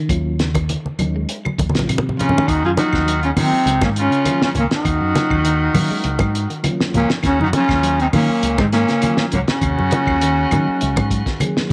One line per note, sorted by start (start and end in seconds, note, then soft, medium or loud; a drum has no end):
0.09 0.73 D#2 medium
0.09 0.42 F#3 medium
0.09 0.42 A#3 medium
0.09 0.42 C#4 medium
0.09 0.43 F4 medium
0.09 muted clean electric guitar stroke medium
0.09 kick medium
0.09 closed hi-hat medium
0.09 claves medium
0.39 0.54 C#3 medium
0.39 snare medium
0.39 closed hi-hat medium
0.55 0.68 D#3 medium
0.55 kick medium
0.55 closed hi-hat medium
0.55 high conga medium
0.55 claves medium
0.69 0.96 D#3 medium
0.69 closed hi-hat medium
0.69 high conga medium
0.85 muted fingered electric bass stroke soft
0.85 high conga medium
0.99 1.24 D#2 medium
0.99 1.27 F#3 medium
0.99 1.13 F#3 medium
0.99 1.27 A#3 medium
0.99 1.27 C#4 medium
0.99 1.27 D#4 medium
0.99 closed hi-hat soft
0.99 high conga medium
0.99 claves medium
1.16 1.42 G#3 medium
1.29 closed hi-hat medium
1.45 1.58 F#3 medium
1.45 high conga medium
1.45 claves medium
1.58 1.72 D#2 medium
1.58 1.73 F#3 medium
1.58 kick medium
1.58 closed hi-hat medium
1.58 high conga medium
1.69 high conga loud
1.74 1.87 A#1 medium
1.74 1.86 D#3 medium
1.74 2.02 F#3 medium
1.74 2.02 A#3 medium
1.74 2.02 C#4 medium
1.74 2.03 F4 medium
1.74 snare medium
1.74 closed hi-hat soft
1.79 high conga loud
1.88 2.35 C3 medium
1.88 2.15 D#3 medium
1.88 closed hi-hat medium
1.88 low conga medium
1.88 claves medium
1.98 low conga medium
2.09 low conga medium
2.17 2.49 C#3 medium
2.17 2.44 F3 medium
2.17 2.50 C#4 loud
2.17 2.50 F4 medium
2.17 closed hi-hat soft
2.17 low conga medium
2.29 low conga medium
2.35 2.47 D#3 medium
2.35 low conga medium
2.47 2.62 D#2 loud
2.47 2.74 D#3 medium
2.47 2.64 D#3 medium
2.47 2.64 D#4 loud
2.47 2.64 F#4 medium
2.47 kick medium
2.47 closed hi-hat medium
2.47 claves medium
2.64 2.76 F#2 medium
2.64 2.71 F3 medium
2.64 2.72 F4 medium
2.64 2.71 G#4 medium
2.77 3.20 D#3 medium
2.77 3.04 F3 medium
2.77 3.00 F#3 medium
2.77 3.00 A#3 medium
2.77 3.01 C#4 medium
2.77 3.20 D#4 loud
2.77 3.00 F4 medium
2.77 3.21 F#4 medium
2.77 closed hi-hat soft
2.77 high conga loud
2.93 3.31 D#2 medium
2.93 kick medium
2.93 snare soft
2.93 claves medium
3.06 3.33 F#3 medium
3.06 closed hi-hat medium
3.22 3.31 C#3 medium
3.22 3.31 C#4 medium
3.22 3.29 F4 medium
3.22 closed hi-hat soft
3.37 3.80 C3 medium
3.37 3.64 D#3 medium
3.37 3.50 D#3 medium
3.37 3.70 F#3 medium
3.37 3.70 A#3 medium
3.37 3.80 C4 loud
3.37 3.70 D#4 medium
3.37 3.81 D#4 medium
3.37 3.70 F4 medium
3.37 open hi-hat medium
3.37 high conga medium
3.37 low conga medium
3.37 claves medium
3.52 muted fingered electric bass stroke soft
3.66 3.80 C#2 medium
3.66 3.81 C#3 medium
3.66 closed hi-hat medium
3.82 4.08 G#2 loud
3.82 3.90 A#2 medium
3.82 4.09 D#3 medium
3.82 3.90 A#3 medium
3.82 3.89 C#4 medium
3.82 kick medium
3.82 snare soft
3.82 high conga medium
3.82 low conga medium
3.82 claves medium
3.96 4.41 C#3 medium
3.96 4.40 C#4 loud
3.96 4.40 F4 medium
3.96 closed hi-hat medium
4.11 4.24 C#3 medium
4.11 closed hi-hat soft
4.24 4.52 D#3 medium
4.24 4.59 F#3 medium
4.24 4.59 A#3 medium
4.24 4.59 C#4 medium
4.24 4.59 F4 medium
4.24 closed hi-hat medium
4.24 high conga medium
4.24 claves medium
4.42 4.50 C#4 medium
4.42 4.49 F4 medium
4.42 snare medium
4.46 4.51 C#3 medium
4.55 4.69 C#2 medium
4.55 4.82 D#3 medium
4.55 4.63 C#4 medium
4.55 closed hi-hat medium
4.55 low conga medium
4.59 4.66 A#2 medium
4.59 4.65 A#3 medium
4.71 6.64 D#3 medium
4.71 6.64 D#4 medium
4.71 6.64 F#4 medium
4.71 snare medium
4.71 closed hi-hat soft
4.85 4.99 D#2 medium
4.85 muted clean electric guitar stroke medium
4.85 kick medium
4.85 closed hi-hat medium
4.85 claves medium
5.00 5.13 F#2 loud
5.15 5.29 C#3 medium
5.15 5.38 F#3 medium
5.15 5.38 A#3 medium
5.15 5.38 C#4 medium
5.15 5.38 F4 medium
5.15 snare soft
5.15 closed hi-hat medium
5.15 high conga loud
5.30 5.68 D#2 medium
5.30 5.43 D#3 medium
5.30 kick medium
5.30 claves medium
5.45 5.71 D#3 medium
5.45 closed hi-hat medium
5.74 5.88 D#3 medium
5.74 6.07 F#3 medium
5.74 5.89 F#3 medium
5.74 6.07 A#3 medium
5.74 6.08 C#4 medium
5.74 6.08 F5 loud
5.74 open hi-hat medium
5.74 high conga medium
5.74 low conga medium
5.74 claves medium
5.91 6.17 G#3 medium
5.91 muted fingered electric bass stroke soft
6.04 6.18 C#2 loud
6.04 closed hi-hat medium
6.19 6.46 G#2 loud
6.19 6.33 F#3 medium
6.19 kick medium
6.19 closed hi-hat soft
6.19 high conga medium
6.19 claves medium
6.35 closed hi-hat medium
6.50 6.63 D#3 medium
6.50 closed hi-hat soft
6.63 6.91 D#3 medium
6.63 6.96 F#3 medium
6.63 6.97 A#3 medium
6.63 6.97 C#4 medium
6.63 6.97 F4 medium
6.63 closed hi-hat medium
6.63 high conga medium
6.63 claves medium
6.80 snare medium
6.94 7.07 C#2 medium
6.94 7.10 A#2 medium
6.94 7.21 F3 medium
6.94 7.09 A#3 loud
6.94 7.10 C#4 medium
6.94 closed hi-hat soft
6.94 low conga medium
7.10 snare medium
7.10 closed hi-hat soft
7.23 7.37 D#2 medium
7.23 7.39 C#3 medium
7.23 7.50 D#3 medium
7.23 7.40 C#4 loud
7.23 kick medium
7.23 snare soft
7.23 closed hi-hat medium
7.23 claves medium
7.27 7.40 F#4 medium
7.40 7.52 F#2 loud
7.40 7.47 D#4 medium
7.40 high conga medium
7.44 7.49 D#3 medium
7.44 7.50 F#4 medium
7.52 7.80 F3 medium
7.52 7.75 F#3 medium
7.52 7.75 A#3 medium
7.52 7.76 C#4 medium
7.52 7.97 C#4 loud
7.52 7.76 F4 medium
7.52 closed hi-hat soft
7.52 high conga medium
7.57 7.98 C#3 medium
7.57 7.98 F4 medium
7.69 8.07 D#2 medium
7.69 kick medium
7.69 snare soft
7.69 claves medium
7.83 8.09 F#3 medium
7.83 closed hi-hat medium
8.00 8.07 C3 medium
8.00 8.07 C4 medium
8.00 8.07 D#4 medium
8.00 closed hi-hat soft
8.12 8.56 A#2 medium
8.12 8.40 D#3 medium
8.12 8.27 D#3 medium
8.12 8.45 F#3 medium
8.12 8.46 A#3 medium
8.12 8.56 A#3 medium
8.12 8.46 C#4 medium
8.12 8.57 C#4 medium
8.12 8.46 F4 medium
8.12 open hi-hat medium
8.12 high conga medium
8.12 low conga medium
8.12 claves medium
8.29 muted fingered electric bass stroke soft
8.43 8.56 C#2 loud
8.43 8.57 C#3 medium
8.43 closed hi-hat medium
8.58 8.84 G#2 loud
8.58 8.66 G#2 medium
8.58 8.86 D#3 medium
8.58 8.66 G#3 medium
8.58 8.66 C4 medium
8.58 kick medium
8.58 snare soft
8.58 high conga medium
8.58 low conga medium
8.58 claves medium
8.73 9.15 A#2 medium
8.73 9.15 A#3 loud
8.73 9.15 C#4 medium
8.73 snare soft
8.73 closed hi-hat soft
8.88 9.01 C#3 medium
8.88 snare soft
8.88 closed hi-hat soft
9.02 9.29 D#3 medium
9.02 9.35 F#3 medium
9.02 9.35 A#3 medium
9.02 9.36 C#4 medium
9.02 9.36 F4 medium
9.02 closed hi-hat medium
9.02 high conga medium
9.02 claves medium
9.17 9.26 A#2 medium
9.17 9.25 A#3 medium
9.17 9.23 C#4 medium
9.17 snare medium
9.32 9.46 C#2 medium
9.32 9.40 F#2 medium
9.32 9.59 C#3 medium
9.32 9.41 F#3 medium
9.32 9.40 A#3 medium
9.32 closed hi-hat medium
9.32 low conga medium
9.48 11.40 C#3 medium
9.48 11.41 C#4 medium
9.48 11.40 F#4 medium
9.48 snare medium
9.48 closed hi-hat soft
9.61 9.75 D#2 medium
9.61 9.89 C3 medium
9.61 kick medium
9.61 closed hi-hat medium
9.61 claves medium
9.79 9.91 F#2 loud
9.79 high conga medium
9.91 10.06 C#3 medium
9.91 10.14 F#3 medium
9.91 10.14 A#3 medium
9.91 10.14 C#4 medium
9.91 10.14 F4 medium
9.91 closed hi-hat medium
9.91 high conga loud
10.07 10.45 D#2 medium
10.07 10.20 D#3 medium
10.07 kick medium
10.07 claves medium
10.21 10.49 D#3 medium
10.21 closed hi-hat medium
10.51 10.65 D#3 medium
10.51 10.84 F#3 loud
10.51 10.66 F#3 medium
10.51 10.84 A#3 medium
10.51 10.84 C#4 medium
10.51 10.85 D#4 loud
10.51 closed hi-hat medium
10.51 high conga medium
10.51 low conga medium
10.51 claves medium
10.68 muted clean electric guitar stroke medium
10.68 muted fingered electric bass stroke soft
10.81 10.95 C#2 loud
10.81 closed hi-hat medium
10.96 11.22 G#2 loud
10.96 11.09 F#3 medium
10.96 kick medium
10.96 closed hi-hat soft
10.96 high conga loud
10.96 low conga medium
10.96 claves medium
11.11 11.25 F#3 medium
11.11 kick medium
11.11 closed hi-hat medium
11.26 11.39 D#3 medium
11.26 kick medium
11.26 snare soft
11.26 closed hi-hat soft
11.40 11.67 D#3 medium
11.40 11.73 F#3 medium
11.40 11.73 A#3 medium
11.40 11.73 C#4 medium
11.40 11.73 G#4 medium
11.40 closed hi-hat medium
11.40 high conga medium
11.40 claves medium
11.57 snare medium
11.69 11.73 F3 medium